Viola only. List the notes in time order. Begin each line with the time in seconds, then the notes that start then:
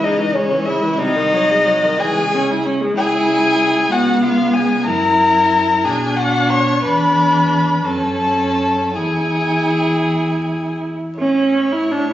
0.04 G#3
0.19 E3
0.35 C#3
0.52 E3
0.66 G#3
0.83 E3
0.99 C3
1.16 D#3
1.33 F#3
1.50 G#3
1.66 F#3
1.84 D#3
2.01 E3
2.18 G#3
2.34 C#4
2.51 E4
2.66 C#4
2.81 G#3
2.96 E4
3.92 B3
4.86 E4
5.85 D4
6.84 D4
7.86 C#4
8.95 E4
11.19 C#4
11.72 E4
11.91 D4
12.10 E4